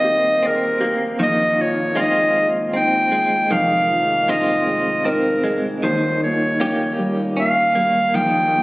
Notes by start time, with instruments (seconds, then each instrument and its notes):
Already playing: felt piano D#1 D#2 D#3 C4 G4 G#4, clean electric guitar D#3 A#3 C4, clarinet D#5
0.04 felt piano G4
0.43 clean electric guitar C4, felt piano G#4
0.47 clarinet A#4
0.80 clean electric guitar A#3, felt piano G4
1.19 felt piano A#1 A#2, clean electric guitar D#3, clarinet D#5
1.58 felt piano F3, clarinet C#5
1.95 clean electric guitar G#3 C4 F4, felt piano D#4
2.00 clarinet D#5
2.35 felt piano G#4
2.73 clean electric guitar C4, felt piano D#4, clarinet G5
3.12 clean electric guitar G#3, felt piano G#4
3.51 felt piano F1 F2, clean electric guitar D#3, clarinet F5
3.89 felt piano F3
4.28 clean electric guitar G#3 C4 F4, felt piano D#4, clarinet D#5
4.66 felt piano G#4
5.05 clean electric guitar C4, felt piano D#4, clarinet A#4
5.44 clean electric guitar G#3, felt piano G#4
5.83 felt piano D#1 D#2, clean electric guitar D#3, clarinet C5
6.22 felt piano A#2, clarinet C#5
6.60 felt piano D#3, clean electric guitar A#3 C#4 G4
6.98 felt piano G3
7.37 felt piano A#3, clean electric guitar C#4, clarinet F5
7.75 felt piano G3, clean electric guitar A#3
8.14 felt piano A#1, clean electric guitar D#3, clarinet G5
8.54 felt piano A#2